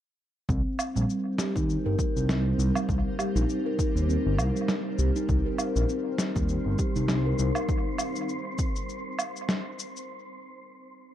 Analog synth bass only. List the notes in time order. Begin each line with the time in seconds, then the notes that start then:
0.49 C2
0.96 A#1
1.56 D#2
1.86 G1
2.16 C2
2.59 C2
2.89 C2
3.36 A#1
3.95 D#2
4.26 G1
4.39 C2
4.99 C2
5.29 C2
5.76 A#1
6.36 D#2
6.66 G1
6.96 C2
7.39 C2